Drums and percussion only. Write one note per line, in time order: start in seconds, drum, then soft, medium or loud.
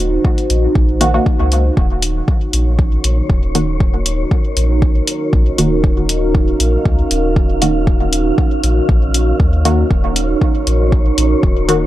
0.25 kick loud
0.38 closed hi-hat soft
0.50 closed hi-hat medium
0.75 kick loud
1.01 closed hi-hat medium
1.26 kick loud
1.52 closed hi-hat medium
1.77 kick loud
2.02 closed hi-hat medium
2.28 kick loud
2.53 closed hi-hat medium
2.79 kick loud
3.04 closed hi-hat medium
3.30 kick loud
3.55 closed hi-hat medium
3.80 kick loud
4.06 closed hi-hat medium
4.31 kick loud
4.57 closed hi-hat medium
4.82 kick loud
5.07 closed hi-hat medium
5.33 kick loud
5.58 closed hi-hat medium
5.84 kick loud
6.09 closed hi-hat medium
6.35 kick loud
6.60 closed hi-hat medium
6.85 kick loud
7.11 closed hi-hat medium
7.36 kick loud
7.62 closed hi-hat medium
7.87 kick loud
8.13 closed hi-hat medium
8.38 kick loud
8.63 closed hi-hat medium
8.89 kick loud
9.14 closed hi-hat medium
9.40 kick loud
9.65 closed hi-hat medium
9.91 kick loud
10.16 closed hi-hat medium
10.41 kick loud
10.67 closed hi-hat medium
10.92 kick loud
11.18 closed hi-hat medium
11.43 kick loud
11.69 closed hi-hat medium